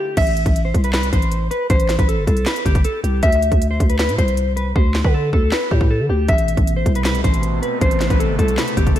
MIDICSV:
0, 0, Header, 1, 5, 480
1, 0, Start_track
1, 0, Key_signature, 0, "minor"
1, 0, Tempo, 382166
1, 215, Time_signature, 4, 2, 24, 8
1, 11296, End_track
2, 0, Start_track
2, 0, Title_t, "Clean electric guitar"
2, 0, Program_c, 0, 27
2, 0, Note_on_c, 0, 67, 87
2, 188, Note_off_c, 0, 67, 0
2, 216, Note_on_c, 0, 76, 114
2, 780, Note_off_c, 0, 76, 0
2, 815, Note_on_c, 0, 72, 74
2, 1028, Note_off_c, 0, 72, 0
2, 1058, Note_on_c, 0, 71, 89
2, 1163, Note_off_c, 0, 71, 0
2, 1178, Note_on_c, 0, 71, 102
2, 1389, Note_off_c, 0, 71, 0
2, 1414, Note_on_c, 0, 72, 89
2, 1866, Note_off_c, 0, 72, 0
2, 1894, Note_on_c, 0, 71, 80
2, 2107, Note_off_c, 0, 71, 0
2, 2136, Note_on_c, 0, 72, 106
2, 2474, Note_off_c, 0, 72, 0
2, 2500, Note_on_c, 0, 71, 90
2, 2604, Note_off_c, 0, 71, 0
2, 2618, Note_on_c, 0, 69, 82
2, 2830, Note_off_c, 0, 69, 0
2, 2856, Note_on_c, 0, 69, 90
2, 3068, Note_off_c, 0, 69, 0
2, 3096, Note_on_c, 0, 71, 93
2, 3308, Note_off_c, 0, 71, 0
2, 3340, Note_on_c, 0, 67, 87
2, 3550, Note_off_c, 0, 67, 0
2, 3576, Note_on_c, 0, 69, 90
2, 3788, Note_off_c, 0, 69, 0
2, 3815, Note_on_c, 0, 67, 81
2, 4028, Note_off_c, 0, 67, 0
2, 4054, Note_on_c, 0, 76, 116
2, 4618, Note_off_c, 0, 76, 0
2, 4655, Note_on_c, 0, 72, 85
2, 4868, Note_off_c, 0, 72, 0
2, 4892, Note_on_c, 0, 71, 75
2, 5000, Note_off_c, 0, 71, 0
2, 5016, Note_on_c, 0, 71, 88
2, 5228, Note_off_c, 0, 71, 0
2, 5256, Note_on_c, 0, 72, 85
2, 5707, Note_off_c, 0, 72, 0
2, 5733, Note_on_c, 0, 71, 76
2, 5947, Note_off_c, 0, 71, 0
2, 5979, Note_on_c, 0, 72, 97
2, 6315, Note_off_c, 0, 72, 0
2, 6337, Note_on_c, 0, 71, 88
2, 6442, Note_off_c, 0, 71, 0
2, 6458, Note_on_c, 0, 69, 83
2, 6669, Note_off_c, 0, 69, 0
2, 6693, Note_on_c, 0, 69, 86
2, 6907, Note_off_c, 0, 69, 0
2, 6932, Note_on_c, 0, 71, 89
2, 7146, Note_off_c, 0, 71, 0
2, 7177, Note_on_c, 0, 67, 78
2, 7389, Note_off_c, 0, 67, 0
2, 7417, Note_on_c, 0, 69, 87
2, 7629, Note_off_c, 0, 69, 0
2, 7657, Note_on_c, 0, 67, 88
2, 7869, Note_off_c, 0, 67, 0
2, 7897, Note_on_c, 0, 76, 110
2, 8460, Note_off_c, 0, 76, 0
2, 8497, Note_on_c, 0, 72, 76
2, 8709, Note_off_c, 0, 72, 0
2, 8738, Note_on_c, 0, 71, 84
2, 8843, Note_off_c, 0, 71, 0
2, 8858, Note_on_c, 0, 71, 101
2, 9069, Note_off_c, 0, 71, 0
2, 9096, Note_on_c, 0, 72, 91
2, 9546, Note_off_c, 0, 72, 0
2, 9575, Note_on_c, 0, 71, 75
2, 9787, Note_off_c, 0, 71, 0
2, 9817, Note_on_c, 0, 72, 104
2, 10154, Note_off_c, 0, 72, 0
2, 10177, Note_on_c, 0, 71, 89
2, 10282, Note_off_c, 0, 71, 0
2, 10295, Note_on_c, 0, 69, 83
2, 10508, Note_off_c, 0, 69, 0
2, 10535, Note_on_c, 0, 69, 89
2, 10748, Note_off_c, 0, 69, 0
2, 10776, Note_on_c, 0, 71, 89
2, 10988, Note_off_c, 0, 71, 0
2, 11018, Note_on_c, 0, 67, 86
2, 11229, Note_off_c, 0, 67, 0
2, 11255, Note_on_c, 0, 69, 91
2, 11296, Note_off_c, 0, 69, 0
2, 11296, End_track
3, 0, Start_track
3, 0, Title_t, "Analog synth pad"
3, 0, Program_c, 1, 89
3, 0, Note_on_c, 1, 50, 84
3, 0, Note_on_c, 1, 57, 74
3, 0, Note_on_c, 1, 64, 78
3, 0, Note_on_c, 1, 65, 92
3, 176, Note_off_c, 1, 50, 0
3, 176, Note_off_c, 1, 57, 0
3, 176, Note_off_c, 1, 64, 0
3, 176, Note_off_c, 1, 65, 0
3, 7895, Note_on_c, 1, 48, 85
3, 7896, Note_on_c, 1, 47, 97
3, 7896, Note_on_c, 1, 57, 79
3, 11296, Note_off_c, 1, 47, 0
3, 11296, Note_off_c, 1, 48, 0
3, 11296, Note_off_c, 1, 57, 0
3, 11296, End_track
4, 0, Start_track
4, 0, Title_t, "808-style bass"
4, 0, Program_c, 2, 38
4, 215, Note_on_c, 2, 33, 117
4, 560, Note_off_c, 2, 33, 0
4, 576, Note_on_c, 2, 33, 109
4, 921, Note_off_c, 2, 33, 0
4, 934, Note_on_c, 2, 36, 102
4, 1395, Note_off_c, 2, 36, 0
4, 1416, Note_on_c, 2, 33, 102
4, 1876, Note_off_c, 2, 33, 0
4, 2135, Note_on_c, 2, 33, 119
4, 2480, Note_off_c, 2, 33, 0
4, 2496, Note_on_c, 2, 33, 114
4, 2736, Note_on_c, 2, 31, 96
4, 2754, Note_off_c, 2, 33, 0
4, 2849, Note_off_c, 2, 31, 0
4, 2855, Note_on_c, 2, 36, 102
4, 3085, Note_off_c, 2, 36, 0
4, 3335, Note_on_c, 2, 31, 104
4, 3565, Note_off_c, 2, 31, 0
4, 3814, Note_on_c, 2, 36, 101
4, 4045, Note_off_c, 2, 36, 0
4, 4054, Note_on_c, 2, 38, 120
4, 4400, Note_off_c, 2, 38, 0
4, 4416, Note_on_c, 2, 38, 108
4, 4761, Note_off_c, 2, 38, 0
4, 4775, Note_on_c, 2, 38, 110
4, 5136, Note_on_c, 2, 45, 100
4, 5155, Note_off_c, 2, 38, 0
4, 5249, Note_off_c, 2, 45, 0
4, 5255, Note_on_c, 2, 36, 108
4, 5946, Note_off_c, 2, 36, 0
4, 5974, Note_on_c, 2, 38, 121
4, 6320, Note_off_c, 2, 38, 0
4, 6336, Note_on_c, 2, 50, 104
4, 6681, Note_off_c, 2, 50, 0
4, 6694, Note_on_c, 2, 38, 105
4, 6925, Note_off_c, 2, 38, 0
4, 7175, Note_on_c, 2, 45, 105
4, 7535, Note_on_c, 2, 50, 101
4, 7554, Note_off_c, 2, 45, 0
4, 7649, Note_off_c, 2, 50, 0
4, 7655, Note_on_c, 2, 38, 107
4, 7885, Note_off_c, 2, 38, 0
4, 7894, Note_on_c, 2, 33, 113
4, 8240, Note_off_c, 2, 33, 0
4, 8256, Note_on_c, 2, 33, 109
4, 8601, Note_off_c, 2, 33, 0
4, 8615, Note_on_c, 2, 36, 108
4, 9075, Note_off_c, 2, 36, 0
4, 9095, Note_on_c, 2, 33, 106
4, 9556, Note_off_c, 2, 33, 0
4, 9815, Note_on_c, 2, 33, 120
4, 10160, Note_off_c, 2, 33, 0
4, 10177, Note_on_c, 2, 33, 112
4, 10415, Note_on_c, 2, 31, 98
4, 10434, Note_off_c, 2, 33, 0
4, 10529, Note_off_c, 2, 31, 0
4, 10536, Note_on_c, 2, 36, 102
4, 10766, Note_off_c, 2, 36, 0
4, 11016, Note_on_c, 2, 31, 106
4, 11246, Note_off_c, 2, 31, 0
4, 11296, End_track
5, 0, Start_track
5, 0, Title_t, "Drums"
5, 213, Note_on_c, 9, 42, 83
5, 215, Note_on_c, 9, 36, 127
5, 215, Note_on_c, 9, 49, 108
5, 336, Note_off_c, 9, 42, 0
5, 336, Note_on_c, 9, 42, 65
5, 340, Note_off_c, 9, 36, 0
5, 341, Note_off_c, 9, 49, 0
5, 461, Note_off_c, 9, 42, 0
5, 461, Note_on_c, 9, 42, 82
5, 576, Note_on_c, 9, 36, 106
5, 577, Note_off_c, 9, 42, 0
5, 577, Note_on_c, 9, 42, 59
5, 701, Note_off_c, 9, 36, 0
5, 702, Note_off_c, 9, 42, 0
5, 702, Note_on_c, 9, 42, 81
5, 828, Note_off_c, 9, 42, 0
5, 935, Note_on_c, 9, 36, 96
5, 937, Note_on_c, 9, 42, 91
5, 1053, Note_off_c, 9, 42, 0
5, 1053, Note_on_c, 9, 42, 61
5, 1060, Note_off_c, 9, 36, 0
5, 1168, Note_on_c, 9, 39, 101
5, 1174, Note_on_c, 9, 38, 123
5, 1179, Note_off_c, 9, 42, 0
5, 1181, Note_on_c, 9, 42, 65
5, 1293, Note_off_c, 9, 39, 0
5, 1296, Note_off_c, 9, 42, 0
5, 1296, Note_on_c, 9, 42, 67
5, 1300, Note_off_c, 9, 38, 0
5, 1416, Note_on_c, 9, 36, 101
5, 1418, Note_off_c, 9, 42, 0
5, 1418, Note_on_c, 9, 42, 79
5, 1535, Note_off_c, 9, 42, 0
5, 1535, Note_on_c, 9, 42, 52
5, 1541, Note_off_c, 9, 36, 0
5, 1652, Note_off_c, 9, 42, 0
5, 1652, Note_on_c, 9, 42, 78
5, 1778, Note_off_c, 9, 42, 0
5, 1900, Note_on_c, 9, 42, 79
5, 2025, Note_off_c, 9, 42, 0
5, 2133, Note_on_c, 9, 42, 84
5, 2135, Note_on_c, 9, 36, 127
5, 2256, Note_off_c, 9, 42, 0
5, 2256, Note_on_c, 9, 42, 66
5, 2260, Note_off_c, 9, 36, 0
5, 2368, Note_on_c, 9, 39, 73
5, 2375, Note_on_c, 9, 38, 90
5, 2382, Note_off_c, 9, 42, 0
5, 2382, Note_on_c, 9, 42, 77
5, 2494, Note_off_c, 9, 39, 0
5, 2496, Note_on_c, 9, 36, 104
5, 2497, Note_off_c, 9, 42, 0
5, 2497, Note_on_c, 9, 42, 58
5, 2501, Note_off_c, 9, 38, 0
5, 2622, Note_off_c, 9, 36, 0
5, 2623, Note_off_c, 9, 42, 0
5, 2623, Note_on_c, 9, 42, 78
5, 2749, Note_off_c, 9, 42, 0
5, 2855, Note_on_c, 9, 36, 95
5, 2858, Note_on_c, 9, 42, 89
5, 2972, Note_off_c, 9, 42, 0
5, 2972, Note_on_c, 9, 42, 59
5, 2980, Note_off_c, 9, 36, 0
5, 3088, Note_on_c, 9, 39, 98
5, 3095, Note_on_c, 9, 38, 125
5, 3098, Note_off_c, 9, 42, 0
5, 3102, Note_on_c, 9, 42, 67
5, 3214, Note_off_c, 9, 39, 0
5, 3216, Note_off_c, 9, 42, 0
5, 3216, Note_on_c, 9, 42, 70
5, 3221, Note_off_c, 9, 38, 0
5, 3335, Note_on_c, 9, 36, 98
5, 3338, Note_off_c, 9, 42, 0
5, 3338, Note_on_c, 9, 42, 78
5, 3455, Note_off_c, 9, 36, 0
5, 3455, Note_off_c, 9, 42, 0
5, 3455, Note_on_c, 9, 36, 108
5, 3455, Note_on_c, 9, 42, 52
5, 3573, Note_off_c, 9, 42, 0
5, 3573, Note_on_c, 9, 42, 80
5, 3580, Note_off_c, 9, 36, 0
5, 3699, Note_off_c, 9, 42, 0
5, 3819, Note_on_c, 9, 42, 78
5, 3945, Note_off_c, 9, 42, 0
5, 4053, Note_on_c, 9, 42, 84
5, 4054, Note_on_c, 9, 36, 124
5, 4176, Note_off_c, 9, 42, 0
5, 4176, Note_on_c, 9, 42, 68
5, 4180, Note_off_c, 9, 36, 0
5, 4301, Note_off_c, 9, 42, 0
5, 4301, Note_on_c, 9, 42, 79
5, 4416, Note_on_c, 9, 36, 105
5, 4417, Note_off_c, 9, 42, 0
5, 4417, Note_on_c, 9, 42, 57
5, 4542, Note_off_c, 9, 36, 0
5, 4542, Note_off_c, 9, 42, 0
5, 4542, Note_on_c, 9, 42, 83
5, 4668, Note_off_c, 9, 42, 0
5, 4775, Note_on_c, 9, 36, 99
5, 4778, Note_on_c, 9, 42, 86
5, 4893, Note_off_c, 9, 42, 0
5, 4893, Note_on_c, 9, 42, 58
5, 4900, Note_off_c, 9, 36, 0
5, 5009, Note_on_c, 9, 39, 99
5, 5015, Note_on_c, 9, 38, 122
5, 5019, Note_off_c, 9, 42, 0
5, 5022, Note_on_c, 9, 42, 68
5, 5134, Note_off_c, 9, 39, 0
5, 5136, Note_off_c, 9, 42, 0
5, 5136, Note_on_c, 9, 42, 67
5, 5141, Note_off_c, 9, 38, 0
5, 5255, Note_on_c, 9, 36, 98
5, 5257, Note_off_c, 9, 42, 0
5, 5257, Note_on_c, 9, 42, 79
5, 5376, Note_off_c, 9, 42, 0
5, 5376, Note_on_c, 9, 42, 53
5, 5381, Note_off_c, 9, 36, 0
5, 5493, Note_off_c, 9, 42, 0
5, 5493, Note_on_c, 9, 42, 80
5, 5618, Note_off_c, 9, 42, 0
5, 5739, Note_on_c, 9, 42, 76
5, 5865, Note_off_c, 9, 42, 0
5, 5974, Note_on_c, 9, 36, 127
5, 6100, Note_off_c, 9, 36, 0
5, 6208, Note_on_c, 9, 39, 73
5, 6215, Note_on_c, 9, 38, 90
5, 6334, Note_off_c, 9, 39, 0
5, 6336, Note_on_c, 9, 36, 106
5, 6341, Note_off_c, 9, 38, 0
5, 6461, Note_off_c, 9, 36, 0
5, 6695, Note_on_c, 9, 36, 100
5, 6820, Note_off_c, 9, 36, 0
5, 6928, Note_on_c, 9, 39, 102
5, 6935, Note_on_c, 9, 38, 120
5, 7054, Note_off_c, 9, 39, 0
5, 7061, Note_off_c, 9, 38, 0
5, 7175, Note_on_c, 9, 36, 96
5, 7295, Note_off_c, 9, 36, 0
5, 7295, Note_on_c, 9, 36, 104
5, 7420, Note_off_c, 9, 36, 0
5, 7893, Note_on_c, 9, 42, 83
5, 7894, Note_on_c, 9, 36, 127
5, 8017, Note_off_c, 9, 42, 0
5, 8017, Note_on_c, 9, 42, 65
5, 8020, Note_off_c, 9, 36, 0
5, 8142, Note_off_c, 9, 42, 0
5, 8142, Note_on_c, 9, 42, 80
5, 8256, Note_on_c, 9, 36, 101
5, 8258, Note_off_c, 9, 42, 0
5, 8258, Note_on_c, 9, 42, 56
5, 8382, Note_off_c, 9, 36, 0
5, 8383, Note_off_c, 9, 42, 0
5, 8383, Note_on_c, 9, 42, 84
5, 8508, Note_off_c, 9, 42, 0
5, 8615, Note_on_c, 9, 36, 95
5, 8617, Note_on_c, 9, 42, 85
5, 8733, Note_off_c, 9, 42, 0
5, 8733, Note_on_c, 9, 42, 60
5, 8740, Note_off_c, 9, 36, 0
5, 8848, Note_on_c, 9, 39, 99
5, 8855, Note_on_c, 9, 38, 127
5, 8859, Note_off_c, 9, 42, 0
5, 8862, Note_on_c, 9, 42, 67
5, 8974, Note_off_c, 9, 39, 0
5, 8977, Note_off_c, 9, 42, 0
5, 8977, Note_on_c, 9, 42, 67
5, 8981, Note_off_c, 9, 38, 0
5, 9095, Note_on_c, 9, 36, 98
5, 9098, Note_off_c, 9, 42, 0
5, 9098, Note_on_c, 9, 42, 81
5, 9216, Note_off_c, 9, 42, 0
5, 9216, Note_on_c, 9, 42, 54
5, 9221, Note_off_c, 9, 36, 0
5, 9333, Note_off_c, 9, 42, 0
5, 9333, Note_on_c, 9, 42, 79
5, 9459, Note_off_c, 9, 42, 0
5, 9581, Note_on_c, 9, 42, 77
5, 9706, Note_off_c, 9, 42, 0
5, 9814, Note_on_c, 9, 42, 83
5, 9815, Note_on_c, 9, 36, 126
5, 9937, Note_off_c, 9, 42, 0
5, 9937, Note_on_c, 9, 42, 65
5, 9941, Note_off_c, 9, 36, 0
5, 10049, Note_on_c, 9, 39, 73
5, 10056, Note_on_c, 9, 38, 90
5, 10063, Note_off_c, 9, 42, 0
5, 10063, Note_on_c, 9, 42, 79
5, 10175, Note_off_c, 9, 39, 0
5, 10177, Note_on_c, 9, 36, 105
5, 10178, Note_off_c, 9, 42, 0
5, 10178, Note_on_c, 9, 42, 56
5, 10182, Note_off_c, 9, 38, 0
5, 10302, Note_off_c, 9, 36, 0
5, 10304, Note_off_c, 9, 42, 0
5, 10304, Note_on_c, 9, 42, 78
5, 10429, Note_off_c, 9, 42, 0
5, 10535, Note_on_c, 9, 36, 99
5, 10539, Note_on_c, 9, 42, 86
5, 10654, Note_off_c, 9, 42, 0
5, 10654, Note_on_c, 9, 42, 61
5, 10661, Note_off_c, 9, 36, 0
5, 10769, Note_on_c, 9, 39, 99
5, 10776, Note_on_c, 9, 38, 123
5, 10780, Note_off_c, 9, 42, 0
5, 10783, Note_on_c, 9, 42, 66
5, 10895, Note_off_c, 9, 39, 0
5, 10898, Note_off_c, 9, 42, 0
5, 10898, Note_on_c, 9, 42, 68
5, 10902, Note_off_c, 9, 38, 0
5, 11016, Note_on_c, 9, 36, 96
5, 11018, Note_off_c, 9, 42, 0
5, 11018, Note_on_c, 9, 42, 82
5, 11136, Note_off_c, 9, 36, 0
5, 11136, Note_off_c, 9, 42, 0
5, 11136, Note_on_c, 9, 36, 107
5, 11136, Note_on_c, 9, 42, 52
5, 11253, Note_off_c, 9, 42, 0
5, 11253, Note_on_c, 9, 42, 83
5, 11261, Note_off_c, 9, 36, 0
5, 11296, Note_off_c, 9, 42, 0
5, 11296, End_track
0, 0, End_of_file